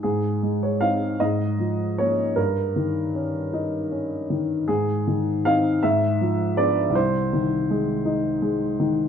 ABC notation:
X:1
M:6/8
L:1/16
Q:3/8=52
K:Ab
V:1 name="Upright piano"
A3 d f2 e4 d2 | B12 | A4 f2 _f4 =d2 | c12 |]
V:2 name="Upright piano" clef=bass
A,,2 A,2 [CE]2 A,,2 F,2 [B,D]2 | G,,2 E,2 D2 E2 D2 E,2 | A,,2 E,2 [CE]2 A,,2 F,2 [_C=D]2 | C,,2 E,2 A,2 E2 A,2 E,2 |]